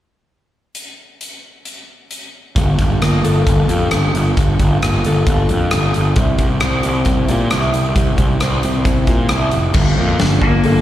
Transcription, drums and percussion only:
0.75 closed hi-hat
1.21 closed hi-hat
1.65 closed hi-hat
2.11 closed hi-hat
2.56 kick, closed hi-hat
2.79 kick, closed hi-hat
3.02 cross-stick, closed hi-hat
3.25 closed hi-hat
3.47 kick, closed hi-hat
3.69 closed hi-hat
3.91 cross-stick, closed hi-hat
4.15 closed hi-hat
4.37 kick, closed hi-hat
4.59 kick, closed hi-hat
4.82 cross-stick, closed hi-hat
5.04 closed hi-hat
5.27 kick, closed hi-hat
5.49 closed hi-hat
5.71 cross-stick, closed hi-hat
5.94 closed hi-hat
6.16 kick, closed hi-hat
6.38 kick, closed hi-hat
6.60 cross-stick, closed hi-hat
6.83 closed hi-hat
7.05 kick, closed hi-hat
7.28 closed hi-hat
7.50 cross-stick, closed hi-hat
7.74 closed hi-hat
7.96 kick, closed hi-hat
8.18 kick, closed hi-hat
8.40 cross-stick, closed hi-hat
8.63 closed hi-hat
8.85 kick, closed hi-hat
9.07 kick, closed hi-hat
9.29 cross-stick, closed hi-hat
9.51 closed hi-hat
9.74 kick, crash
10.19 snare, open hi-hat
10.41 kick
10.64 open hi-hat

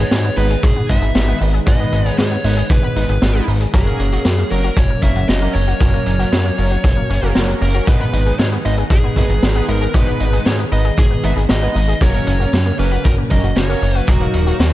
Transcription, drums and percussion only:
0.11 snare, closed hi-hat
0.24 closed hi-hat
0.37 open hi-hat
0.50 closed hi-hat
0.63 kick, closed hi-hat
0.89 kick, closed hi-hat
1.02 closed hi-hat
1.15 snare, closed hi-hat
1.28 closed hi-hat
1.41 open hi-hat
1.54 closed hi-hat
1.67 kick, closed hi-hat
1.79 closed hi-hat
1.93 closed hi-hat
2.06 closed hi-hat
2.18 snare, closed hi-hat
2.31 closed hi-hat
2.44 open hi-hat
2.57 closed hi-hat
2.70 kick, closed hi-hat
2.96 closed hi-hat
3.09 closed hi-hat
3.22 snare, closed hi-hat
3.35 closed hi-hat
3.48 open hi-hat
3.61 closed hi-hat
3.73 kick, closed hi-hat
3.86 closed hi-hat
3.99 closed hi-hat
4.12 closed hi-hat
4.25 snare, closed hi-hat
4.38 closed hi-hat
4.51 open hi-hat
4.64 closed hi-hat
4.77 kick, closed hi-hat
5.02 kick, closed hi-hat
5.16 closed hi-hat
5.29 snare, closed hi-hat
5.42 closed hi-hat
5.55 open hi-hat
5.68 closed hi-hat
5.80 kick, closed hi-hat
5.93 closed hi-hat
6.06 closed hi-hat
6.20 closed hi-hat
6.32 snare, closed hi-hat
6.45 closed hi-hat
6.58 open hi-hat
6.70 closed hi-hat
6.84 kick, closed hi-hat
7.10 closed hi-hat
7.23 closed hi-hat
7.35 snare, closed hi-hat
7.49 closed hi-hat
7.62 open hi-hat
7.74 closed hi-hat
7.87 kick, closed hi-hat, cabasa
8.00 closed hi-hat, cabasa
8.13 closed hi-hat, cabasa
8.26 closed hi-hat, cabasa
8.39 snare, closed hi-hat, cabasa
8.52 closed hi-hat, cabasa
8.65 open hi-hat, cabasa
8.78 closed hi-hat, cabasa
8.90 kick, closed hi-hat, cabasa
9.04 cabasa
9.16 kick, closed hi-hat, cabasa
9.29 closed hi-hat, cabasa
9.42 snare, closed hi-hat, cabasa
9.55 closed hi-hat, cabasa
9.68 open hi-hat, cabasa
9.81 closed hi-hat, cabasa
9.94 kick, closed hi-hat, cabasa
10.07 closed hi-hat, cabasa
10.20 closed hi-hat, cabasa
10.33 closed hi-hat, cabasa
10.46 snare, closed hi-hat, cabasa
10.59 closed hi-hat, cabasa
10.72 open hi-hat, cabasa
10.85 closed hi-hat, cabasa
10.97 kick, closed hi-hat, cabasa
11.11 cabasa
11.23 closed hi-hat, cabasa
11.36 closed hi-hat, cabasa
11.49 snare, closed hi-hat, cabasa
11.62 closed hi-hat, cabasa
11.75 open hi-hat, cabasa
11.88 closed hi-hat, cabasa
12.00 kick, closed hi-hat, cabasa
12.14 closed hi-hat, cabasa
12.27 closed hi-hat, cabasa
12.40 closed hi-hat, cabasa
12.53 snare, closed hi-hat, cabasa
12.66 closed hi-hat, cabasa
12.79 open hi-hat, cabasa
12.91 closed hi-hat, cabasa
13.05 kick, closed hi-hat, cabasa
13.17 cabasa
13.30 kick, closed hi-hat, cabasa
13.44 closed hi-hat, cabasa
13.56 snare, closed hi-hat, cabasa
13.69 closed hi-hat, cabasa
13.82 open hi-hat, cabasa
13.95 closed hi-hat, cabasa
14.07 kick, closed hi-hat, cabasa
14.21 closed hi-hat, cabasa
14.34 closed hi-hat, cabasa
14.47 closed hi-hat, cabasa
14.59 snare, closed hi-hat, cabasa

